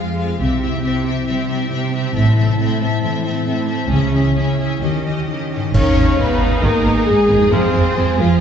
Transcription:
0.00 0.36 F2 soft
0.00 0.43 F3 soft
0.00 0.17 G#3 soft
0.00 2.12 C4 soft
0.00 3.43 C4 soft
0.00 0.17 F4 soft
0.00 0.43 F4 soft
0.00 0.18 G#4 soft
0.00 0.37 G#4 soft
0.00 0.85 C5 soft
0.00 0.18 F5 soft
0.18 0.40 G#3 soft
0.18 0.40 F4 soft
0.18 0.43 G#4 soft
0.18 0.41 F5 soft
0.40 0.77 C2 soft
0.40 2.18 C3 soft
0.40 0.80 C3 soft
0.40 0.62 C4 soft
0.40 3.89 E4 soft
0.40 0.60 G4 soft
0.40 0.61 E5 soft
0.61 0.84 C4 soft
0.61 1.51 E4 soft
0.61 0.81 G4 soft
0.61 0.83 E5 soft
0.83 1.24 C3 medium
0.83 1.04 C4 soft
0.83 1.04 G4 soft
0.83 1.72 C5 soft
0.83 1.05 E5 soft
1.05 1.27 C4 soft
1.05 1.27 G4 soft
1.05 1.94 G4 soft
1.05 1.25 E5 soft
1.27 1.68 C3 soft
1.27 2.19 G3 soft
1.27 1.50 C4 soft
1.27 1.49 G4 soft
1.27 1.47 E5 soft
1.49 1.71 C4 soft
1.49 2.37 E4 soft
1.49 1.70 G4 soft
1.49 1.69 E5 soft
1.71 2.12 C3 medium
1.71 1.93 C4 soft
1.71 1.93 G4 soft
1.71 2.59 C5 soft
1.71 1.91 E5 soft
1.93 2.14 C4 soft
1.93 2.16 G4 soft
1.93 2.19 G4 soft
1.93 2.15 E5 soft
2.15 2.53 A1 medium
2.15 2.55 A2 medium
2.15 3.93 A2 soft
2.15 2.37 C4 soft
2.15 3.88 C4 soft
2.15 2.36 A4 soft
2.15 2.37 E5 soft
2.37 2.58 C4 soft
2.37 3.23 E4 soft
2.37 2.59 A4 soft
2.37 2.58 E5 soft
2.60 2.98 A2 medium
2.60 2.79 C4 soft
2.60 2.81 A4 soft
2.60 3.45 C5 soft
2.60 2.81 E5 soft
2.81 3.01 C4 soft
2.81 3.02 A4 soft
2.81 3.67 A4 soft
2.81 3.02 E5 soft
3.02 3.42 A2 soft
3.02 3.93 E3 soft
3.02 3.24 C4 soft
3.02 3.24 A4 soft
3.02 3.24 E5 soft
3.24 3.46 C4 soft
3.24 4.12 E4 soft
3.24 3.46 A4 soft
3.24 3.45 E5 soft
3.46 3.86 A2 soft
3.46 3.68 C4 soft
3.46 3.67 A4 soft
3.46 3.92 C5 soft
3.46 3.67 E5 soft
3.68 3.91 C4 soft
3.68 3.90 A4 soft
3.68 3.92 A4 soft
3.68 3.90 E5 soft
3.89 4.29 C#2 soft
3.89 4.30 C#3 medium
3.89 4.84 C#3 soft
3.89 4.11 C#4 soft
3.89 5.48 C#4 soft
3.89 4.80 E4 soft
3.89 4.11 G#4 soft
3.93 4.14 E5 soft
4.12 4.35 C#4 soft
4.12 4.84 E4 soft
4.12 4.35 G#4 soft
4.12 4.37 E5 soft
4.36 4.77 C#3 soft
4.36 4.58 C#4 soft
4.36 4.57 G#4 soft
4.36 5.27 C#5 soft
4.36 4.59 E5 soft
4.58 4.80 C#4 soft
4.58 4.81 G#4 soft
4.58 4.84 G#4 soft
4.58 4.83 E5 soft
4.79 5.20 D#2 soft
4.79 5.23 D#3 soft
4.79 5.76 D#3 soft
4.79 5.04 C#4 soft
4.79 5.50 G4 soft
4.79 5.05 G4 soft
4.79 5.04 D#5 soft
5.05 5.27 C#4 soft
5.05 5.60 D#4 soft
5.05 5.28 G4 soft
5.05 5.28 D#5 soft
5.28 5.69 D#3 soft
5.28 5.50 C#4 soft
5.28 5.51 G4 soft
5.28 5.76 C#5 soft
5.28 5.51 D#5 soft
5.51 5.74 C#4 soft
5.51 5.76 G4 soft
5.51 5.74 G4 soft
5.51 5.74 D#5 soft
5.56 7.45 G#2 medium
5.61 7.47 D#4 soft
5.65 7.42 G#4 soft
5.74 5.82 G#1 medium
5.74 5.95 D#3 medium
5.74 6.16 C#4 medium
5.74 7.48 D#4 medium
5.74 7.49 D#4 medium
5.74 8.40 G#4 medium
5.74 6.16 C#5 medium
5.74 6.17 C#5 medium
5.74 6.65 F5 medium
5.74 6.23 C#6 medium
5.74 concert bass drum medium
5.74 crash medium
5.96 6.04 G#1 medium
5.96 6.04 B3 soft
6.18 6.27 G#1 soft
6.18 6.26 G#3 soft
6.18 6.62 B3 medium
6.18 6.63 B4 medium
6.18 6.66 B5 medium
6.40 6.49 G#1 soft
6.40 6.48 B3 soft
6.60 6.71 G#1 medium
6.60 6.83 D#3 medium
6.60 7.07 A#3 medium
6.60 7.05 A#4 medium
6.60 7.07 A#4 medium
6.60 7.52 D#5 medium
6.65 7.08 A#5 medium
6.85 6.94 G#1 soft
6.85 6.93 B3 medium
7.05 7.16 G#1 soft
7.05 7.15 G#3 soft
7.05 7.52 G#3 medium
7.05 7.50 G#4 medium
7.05 7.52 G#4 medium
7.05 7.55 G#5 medium
7.29 7.37 G#1 medium
7.29 7.37 B3 medium
7.35 8.40 F2 medium
7.39 8.40 F4 soft
7.51 7.59 F2 medium
7.51 7.72 C3 medium
7.51 7.73 G#3 medium
7.51 8.17 C4 medium
7.51 8.40 F4 medium
7.51 8.18 C5 medium
7.51 7.96 F5 medium
7.51 8.21 C6 medium
7.73 7.81 F2 medium
7.73 7.82 G#3 medium
7.95 8.04 F2 medium
7.95 8.04 F3 medium
7.95 8.39 G#5 medium
8.18 8.26 F2 medium
8.18 8.40 F3 medium
8.18 8.26 G#3 medium
8.18 8.40 F4 medium
8.18 8.40 F5 medium

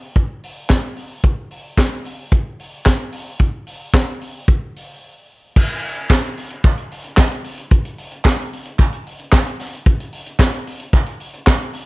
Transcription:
0.16 kick loud
0.16 closed hi-hat medium
0.44 open hi-hat medium
0.69 kick loud
0.69 snare loud
0.69 clap medium
0.69 closed hi-hat soft
0.96 open hi-hat medium
1.23 kick loud
1.23 closed hi-hat medium
1.51 open hi-hat medium
1.77 kick loud
1.77 snare loud
1.77 clap medium
1.77 closed hi-hat medium
2.05 open hi-hat medium
2.31 kick loud
2.31 closed hi-hat medium
2.60 open hi-hat medium
2.86 kick loud
2.86 snare loud
2.86 clap medium
2.86 closed hi-hat medium
3.12 open hi-hat medium
3.39 kick medium
3.39 closed hi-hat medium
3.67 open hi-hat medium
3.93 kick loud
3.93 snare loud
3.93 clap medium
3.93 closed hi-hat medium
4.21 open hi-hat medium
4.48 kick loud
4.48 closed hi-hat medium
4.76 open hi-hat medium
5.56 kick loud
5.56 crash medium
5.70 closed hi-hat medium
5.83 open hi-hat medium
5.96 closed hi-hat soft
6.10 kick loud
6.10 snare loud
6.10 clap loud
6.24 closed hi-hat soft
6.37 open hi-hat medium
6.50 closed hi-hat medium
6.64 kick loud
6.64 clap medium
6.64 closed hi-hat medium
6.77 closed hi-hat soft
6.92 open hi-hat medium
7.04 closed hi-hat soft
7.17 kick loud
7.17 snare loud
7.17 clap loud
7.19 clap loud
7.31 closed hi-hat soft
7.44 open hi-hat medium
7.57 closed hi-hat soft
7.71 kick loud
7.71 closed hi-hat medium
7.85 closed hi-hat medium
7.98 open hi-hat medium
8.12 closed hi-hat soft
8.25 kick loud
8.25 snare loud
8.25 clap loud
8.40 closed hi-hat soft
8.53 open hi-hat medium
8.65 closed hi-hat medium
8.79 kick loud
8.79 clap medium
8.79 closed hi-hat medium
8.92 closed hi-hat soft
9.07 open hi-hat medium
9.19 closed hi-hat soft
9.32 kick loud
9.32 snare loud
9.32 clap medium
9.32 clap loud
9.47 closed hi-hat soft
9.60 open hi-hat medium
9.73 closed hi-hat medium
9.86 kick loud
9.86 closed hi-hat medium
10.00 closed hi-hat medium
10.13 open hi-hat medium
10.26 closed hi-hat soft
10.39 kick loud
10.39 snare loud
10.39 clap loud
10.54 closed hi-hat soft
10.67 open hi-hat medium
10.80 closed hi-hat medium
10.93 kick loud
10.93 clap medium
10.93 closed hi-hat medium
11.06 closed hi-hat soft
11.20 open hi-hat medium
11.33 closed hi-hat soft
11.47 kick loud
11.47 snare loud
11.47 clap medium
11.48 clap loud
11.61 closed hi-hat soft
11.73 open hi-hat medium

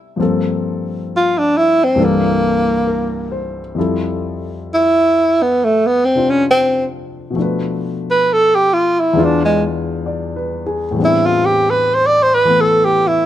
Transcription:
0.00 0.17 C3 soft
0.00 0.17 G3 soft
0.00 0.17 A3 soft
0.00 0.18 B3 soft
0.00 0.19 D4 soft
0.00 0.19 E4 medium
0.16 1.94 G2 soft
0.16 1.97 F3 soft
0.16 1.97 A#3 soft
0.16 1.98 C4 soft
0.21 1.99 A4 soft
1.17 1.40 F4 medium
1.38 1.59 D4 medium
1.57 1.85 E4 medium
1.84 2.06 C4 medium
1.95 3.76 C2 soft
1.95 3.76 G2 soft
1.95 3.77 E3 soft
1.95 3.77 A#3 soft
2.00 3.78 D4 soft
2.00 3.78 A4 medium
2.05 3.51 A#3 medium
2.87 3.58 A#4 soft
3.32 3.95 C5 soft
3.75 7.35 F2 soft
3.75 7.32 F3 soft
3.75 7.36 G3 soft
3.75 7.36 E4 soft
3.79 7.37 A4 soft
4.74 5.44 E4 medium
5.42 5.66 B3 medium
5.64 5.88 A3 medium
5.86 6.06 B3 medium
6.05 6.31 C4 medium
6.15 7.35 C3 soft
6.15 7.35 D4 soft
6.15 7.36 F4 soft
6.30 6.45 C#4 medium
6.51 6.86 C4 medium
7.30 9.13 B2 soft
7.30 9.14 F3 soft
7.36 9.15 A3 soft
7.36 9.16 D4 soft
7.42 9.19 B4 soft
8.11 8.34 B4 medium
8.33 8.57 A4 medium
8.55 8.75 G4 medium
8.74 9.02 F4 medium
9.00 9.26 E4 medium
9.13 10.95 E2 medium
9.13 10.92 E3 soft
9.13 10.96 G#3 soft
9.17 10.97 D4 soft
9.17 10.97 F4 medium
9.24 9.45 D4 medium
9.45 9.64 G#3 medium
10.06 10.63 D5 soft
10.36 10.83 B4 soft
10.66 11.13 G#4 soft
10.91 13.26 A2 soft
10.91 12.44 E3 soft
10.96 13.26 G3 soft
10.96 12.47 B3 soft
11.00 13.26 C4 soft
11.00 13.26 D4 soft
11.05 11.27 E4 medium
11.26 11.47 F4 medium
11.45 11.72 G4 medium
11.70 11.96 B4 medium
11.95 12.08 C5 medium
12.06 12.24 D5 medium
12.23 12.36 C5 medium
12.34 12.62 B4 medium
12.45 13.26 E3 soft
12.45 13.26 A3 soft
12.45 13.26 B3 soft
12.60 12.87 A4 medium
12.85 13.09 G4 medium
13.08 13.26 E4 medium

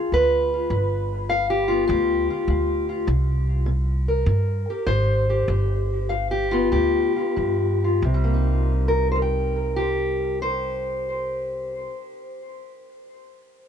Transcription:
0.00 0.52 F4 soft
0.00 0.12 G#4 soft
0.12 0.67 D2 medium
0.12 0.68 G2 medium
0.12 1.89 B4 loud
0.54 0.69 F4 soft
0.70 1.84 G1 medium
0.70 1.26 G2 medium
1.29 1.85 G2 medium
1.29 1.49 F5 loud
1.50 1.86 G4 medium
1.68 3.05 B3 soft
1.68 2.28 F4 medium
1.87 2.26 D2 medium
1.87 2.44 G2 medium
1.87 3.06 G4 medium
2.31 2.88 F4 soft
2.48 3.03 D2 medium
2.48 3.04 G2 medium
2.89 3.05 F4 soft
3.07 4.22 C2 loud
3.07 3.62 C3 medium
3.66 4.22 C3 medium
4.08 4.86 A#4 medium
4.26 4.64 G2 medium
4.26 4.83 C3 medium
4.70 5.29 G4 soft
4.87 5.44 G#1 medium
4.87 5.44 C3 medium
4.87 5.47 C5 loud
5.30 6.12 G4 soft
5.48 6.68 G1 medium
5.48 6.06 G2 medium
6.09 6.68 G2 medium
6.09 6.30 F5 medium
6.31 6.71 G4 medium
6.51 8.00 B3 medium
6.51 7.15 F4 medium
6.72 7.13 D2 medium
6.72 7.33 G2 medium
6.72 8.02 G4 medium
7.16 7.81 F4 soft
7.36 7.98 G2 medium
7.36 7.99 G2 medium
7.84 8.01 F4 soft
8.02 11.86 C2 medium
8.02 11.92 C3 medium
8.14 12.02 G3 medium
8.24 9.15 A#3 medium
8.34 12.21 D#4 medium
8.88 9.11 A#4 medium
9.12 9.22 C5 medium
9.16 12.20 A#4 medium
9.22 9.76 G5 medium
9.76 10.42 G4 medium
10.42 12.71 C5 medium

